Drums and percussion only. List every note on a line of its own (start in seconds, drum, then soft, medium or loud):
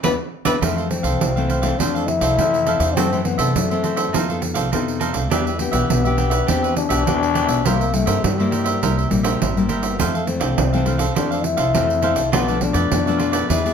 0.04 pandeiro medium
0.45 pandeiro medium
0.62 pandeiro medium
0.78 pandeiro soft
0.91 pandeiro medium
1.04 pandeiro medium
1.21 pandeiro medium
1.37 pandeiro soft
1.50 pandeiro medium
1.63 pandeiro medium
1.80 pandeiro medium
1.96 pandeiro soft
2.08 pandeiro medium
2.21 pandeiro medium
2.39 pandeiro medium
2.54 pandeiro soft
2.67 pandeiro medium
2.80 pandeiro medium
2.97 pandeiro medium
3.12 pandeiro soft
3.25 pandeiro medium
3.39 pandeiro medium
3.56 pandeiro medium
3.71 pandeiro soft
3.84 pandeiro medium
3.97 pandeiro medium
4.14 pandeiro medium
4.30 pandeiro soft
4.42 pandeiro medium
4.55 pandeiro medium
4.73 pandeiro medium
4.88 pandeiro soft
5.01 pandeiro medium
5.14 pandeiro medium
5.31 pandeiro medium
5.47 pandeiro soft
5.59 pandeiro medium
5.73 pandeiro medium
5.90 pandeiro medium
6.05 pandeiro soft
6.18 pandeiro medium
6.31 pandeiro medium
6.48 pandeiro medium
6.64 pandeiro soft
6.77 pandeiro medium
6.90 pandeiro medium
7.07 pandeiro medium
7.23 pandeiro soft
7.35 pandeiro medium
7.49 pandeiro medium
7.66 pandeiro medium
7.81 pandeiro soft
7.94 pandeiro medium
8.07 pandeiro medium
8.24 pandeiro medium
8.40 pandeiro soft
8.52 pandeiro medium
8.66 pandeiro medium
8.83 pandeiro medium
8.99 pandeiro soft
9.11 pandeiro medium
9.24 pandeiro medium
9.42 pandeiro medium
9.57 pandeiro soft
9.69 pandeiro medium
9.83 pandeiro medium
10.00 pandeiro medium
10.15 pandeiro soft
10.27 pandeiro medium
10.41 pandeiro medium
10.58 pandeiro medium
10.73 pandeiro soft
10.86 pandeiro medium
10.99 pandeiro medium
11.16 pandeiro medium
11.32 pandeiro soft
11.44 pandeiro medium
11.58 pandeiro medium
11.75 pandeiro medium
11.90 pandeiro soft
12.02 pandeiro medium
12.16 pandeiro medium
12.33 pandeiro medium
12.48 pandeiro soft
12.61 pandeiro medium
12.74 pandeiro medium
12.92 pandeiro medium
13.07 pandeiro soft
13.20 pandeiro medium
13.33 pandeiro medium
13.50 pandeiro medium
13.66 pandeiro soft